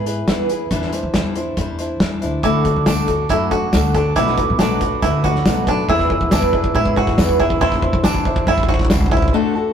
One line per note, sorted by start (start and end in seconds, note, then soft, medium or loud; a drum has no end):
0.00 0.21 G#2 medium
0.06 0.28 E4 soft
0.06 0.28 G#4 soft
0.06 0.28 B4 medium
0.06 closed hi-hat medium
0.28 0.63 E2 medium
0.28 0.50 E3 medium
0.28 0.50 B3 medium
0.28 0.50 E4 medium
0.28 0.50 G#4 medium
0.28 0.48 B4 medium
0.28 kick medium
0.28 snare loud
0.28 closed hi-hat medium
0.49 0.71 E4 soft
0.49 0.72 G#4 soft
0.49 0.71 B4 medium
0.49 closed hi-hat medium
0.71 0.98 E2 medium
0.71 0.93 E3 medium
0.71 0.93 G3 medium
0.71 0.93 D4 medium
0.71 0.93 E4 medium
0.71 0.92 C5 medium
0.71 kick medium
0.71 closed hi-hat medium
0.82 snare soft
0.93 1.14 D4 soft
0.93 1.15 E4 soft
0.93 1.15 C5 medium
0.93 closed hi-hat medium
1.03 1.16 E3 medium
1.14 1.50 E2 medium
1.14 1.36 E3 medium
1.14 1.37 G3 medium
1.14 1.37 D4 medium
1.14 1.36 E4 medium
1.14 1.35 C5 medium
1.14 kick medium
1.14 snare medium
1.14 closed hi-hat medium
1.36 1.57 D4 soft
1.36 1.58 E4 soft
1.36 1.58 C5 medium
1.36 closed hi-hat medium
1.57 1.93 E2 medium
1.57 1.79 G3 medium
1.57 1.79 D4 medium
1.57 1.79 E4 medium
1.57 1.77 C5 medium
1.57 kick medium
1.57 closed hi-hat medium
1.79 2.00 D4 soft
1.79 2.00 E4 soft
1.79 2.00 C5 soft
1.79 closed hi-hat medium
2.00 2.20 E2 medium
2.00 2.22 E3 medium
2.00 2.23 G3 medium
2.00 2.22 D4 medium
2.00 2.21 E4 medium
2.00 2.20 C5 medium
2.00 kick medium
2.00 snare loud
2.00 closed hi-hat medium
2.21 2.42 D2 medium
2.21 2.43 D4 soft
2.21 2.44 E4 soft
2.21 2.44 C5 medium
2.21 closed hi-hat medium
2.43 2.70 D2 medium
2.43 2.65 D3 medium
2.43 2.66 A3 medium
2.43 2.65 D4 medium
2.43 2.86 E4 medium
2.43 2.64 F#4 medium
2.43 2.63 A4 medium
2.43 4.15 D6 medium
2.43 kick medium
2.43 closed hi-hat medium
2.65 2.85 D4 soft
2.65 2.85 F#4 soft
2.65 2.86 A4 soft
2.65 kick medium
2.65 closed hi-hat medium
2.76 2.88 D3 medium
2.86 3.22 D2 medium
2.86 3.08 D3 medium
2.86 3.09 A3 medium
2.86 3.08 D4 medium
2.86 3.29 D4 medium
2.86 3.08 F#4 medium
2.86 3.06 A4 medium
2.86 kick medium
2.86 snare loud
2.86 closed hi-hat medium
2.86 tambourine loud
3.08 3.29 D4 soft
3.08 3.30 F#4 medium
3.08 3.30 A4 soft
3.08 kick medium
3.08 closed hi-hat medium
3.29 3.66 F#2 medium
3.29 3.52 A3 medium
3.29 3.51 D4 medium
3.29 3.51 E4 medium
3.29 3.50 F#4 medium
3.29 3.49 A4 medium
3.29 kick medium
3.29 closed hi-hat medium
3.51 3.72 D4 soft
3.51 3.94 F#4 medium
3.51 3.73 F#4 soft
3.51 3.73 A4 soft
3.51 kick medium
3.51 closed hi-hat medium
3.73 4.09 D2 loud
3.73 3.95 D3 medium
3.73 3.95 A3 medium
3.73 3.95 D4 medium
3.73 3.94 F#4 medium
3.73 3.93 A4 medium
3.73 kick medium
3.73 snare medium
3.73 closed hi-hat medium
3.73 tambourine medium
3.95 4.16 D4 medium
3.95 4.15 D4 soft
3.95 4.16 F#4 medium
3.95 4.17 A4 medium
3.95 kick medium
3.95 closed hi-hat medium
4.16 4.43 B1 loud
4.16 4.38 B2 medium
4.16 4.38 F#3 medium
4.16 4.38 A3 medium
4.16 4.38 D4 medium
4.16 4.59 E4 medium
4.16 4.37 F#4 medium
4.16 4.36 B4 loud
4.16 5.94 D6 medium
4.16 kick medium
4.16 closed hi-hat medium
4.27 snare soft
4.37 4.59 A3 soft
4.37 4.59 D4 medium
4.37 4.59 F#4 soft
4.37 4.59 B4 medium
4.37 kick medium
4.37 closed hi-hat medium
4.50 4.61 B2 medium
4.59 4.95 B1 medium
4.59 4.81 B2 medium
4.59 4.81 F#3 medium
4.59 4.81 A3 medium
4.59 5.02 D4 medium
4.59 4.81 D4 medium
4.59 4.81 F#4 medium
4.59 4.80 B4 medium
4.59 kick medium
4.59 snare loud
4.59 closed hi-hat medium
4.59 tambourine medium
4.81 5.02 A3 soft
4.81 5.03 D4 soft
4.81 5.03 F#4 medium
4.81 5.03 B4 medium
4.81 kick loud
4.81 closed hi-hat medium
5.02 5.38 D2 medium
5.02 5.25 A3 medium
5.02 5.25 D4 medium
5.02 5.24 E4 medium
5.02 5.24 F#4 medium
5.02 5.23 B4 medium
5.02 kick medium
5.02 closed hi-hat medium
5.24 5.45 A3 soft
5.24 5.46 D4 medium
5.24 5.67 F#4 medium
5.24 5.46 F#4 medium
5.24 5.46 B4 medium
5.24 kick medium
5.24 closed hi-hat medium
5.35 snare soft
5.46 5.81 B1 loud
5.46 5.68 B2 medium
5.46 5.68 F#3 medium
5.46 5.68 A3 medium
5.46 5.67 D4 medium
5.46 5.66 F#4 medium
5.46 5.66 B4 loud
5.46 kick loud
5.46 snare loud
5.46 closed hi-hat medium
5.46 tambourine medium
5.67 5.89 A3 soft
5.67 5.89 D4 medium
5.67 5.89 F#4 medium
5.67 5.89 B4 medium
5.67 kick medium
5.67 closed hi-hat medium
5.89 6.16 E2 medium
5.89 6.11 E3 medium
5.89 6.11 B3 medium
5.89 6.32 E4 medium
5.89 6.11 E4 loud
5.89 6.10 G#4 medium
5.89 6.09 B4 loud
5.89 7.67 E6 loud
5.89 kick medium
5.99 kick medium
5.99 snare soft
6.10 6.31 E4 soft
6.10 6.32 G#4 medium
6.10 6.32 B4 medium
6.10 kick loud
6.21 6.33 E3 medium
6.21 kick medium
6.31 6.67 E2 medium
6.31 6.54 E3 medium
6.31 6.54 B3 loud
6.31 6.75 D4 medium
6.31 6.53 E4 medium
6.31 6.52 G#4 medium
6.31 6.51 B4 medium
6.31 kick medium
6.31 snare loud
6.31 tambourine loud
6.42 kick loud
6.52 6.74 E4 soft
6.52 6.74 G#4 medium
6.52 6.75 B4 medium
6.52 kick loud
6.64 kick loud
6.74 7.10 G#2 medium
6.74 6.96 B3 medium
6.74 6.97 E4 medium
6.74 6.96 G#4 medium
6.74 6.95 B4 medium
6.74 kick loud
6.86 kick loud
6.96 7.17 E4 medium
6.96 7.39 F#4 medium
6.96 7.18 G#4 medium
6.96 7.18 B4 soft
6.96 kick loud
7.07 kick loud
7.07 snare soft
7.18 7.54 E2 loud
7.18 7.40 E3 medium
7.18 7.40 B3 medium
7.18 7.40 E4 medium
7.18 7.39 G#4 medium
7.18 7.38 B4 loud
7.18 kick loud
7.18 snare loud
7.18 tambourine loud
7.29 kick medium
7.39 7.60 E4 medium
7.39 7.61 E4 soft
7.39 7.62 G#4 medium
7.39 7.61 B4 medium
7.39 kick loud
7.50 kick loud
7.61 7.88 E2 loud
7.61 7.83 E3 loud
7.61 7.83 G3 medium
7.61 7.83 D4 loud
7.61 8.04 E4 loud
7.61 7.82 E4 loud
7.61 7.81 C5 loud
7.61 9.08 C6 medium
7.61 kick loud
7.72 kick medium
7.72 snare soft
7.82 8.04 D4 soft
7.82 8.04 E4 medium
7.82 8.04 C5 medium
7.82 kick loud
7.93 8.06 E3 medium
7.93 kick loud
8.04 8.40 E2 medium
8.04 8.26 E3 medium
8.04 8.26 G3 medium
8.04 8.47 D4 medium
8.04 8.26 D4 medium
8.04 8.26 E4 medium
8.04 8.24 C5 medium
8.04 kick loud
8.04 snare loud
8.04 tambourine loud
8.15 kick loud
8.25 8.47 D4 medium
8.25 8.48 E4 medium
8.25 8.47 C5 medium
8.25 kick loud
8.36 kick loud
8.47 8.83 E2 loud
8.47 8.69 G3 medium
8.47 8.69 D4 medium
8.47 8.68 E4 loud
8.47 8.69 E4 medium
8.47 8.68 C5 medium
8.47 kick loud
8.58 kick loud
8.63 kick loud
8.69 8.90 D4 soft
8.69 8.90 E4 medium
8.69 9.11 F#4 medium
8.69 8.90 C5 medium
8.69 kick loud
8.74 kick loud
8.79 kick loud
8.79 snare soft
8.85 kick loud
8.90 9.26 C#2 loud
8.90 9.12 E3 medium
8.90 9.12 G3 medium
8.90 9.12 D4 medium
8.90 9.11 E4 medium
8.90 9.10 C5 loud
8.90 kick loud
8.90 snare loud
8.90 tambourine medium
8.95 kick loud
9.01 kick loud
9.06 kick loud
9.11 9.33 D4 medium
9.11 9.33 E4 medium
9.11 9.34 E4 medium
9.11 9.33 C5 medium
9.11 kick loud
9.17 kick loud
9.22 kick loud
9.28 kick loud
9.33 9.55 D3 loud
9.33 9.55 A3 loud
9.33 9.55 D4 loud
9.33 9.55 F#4 medium
9.33 9.54 A4 loud
9.55 9.73 D4 medium
9.55 9.73 F#4 medium
9.55 9.73 A4 medium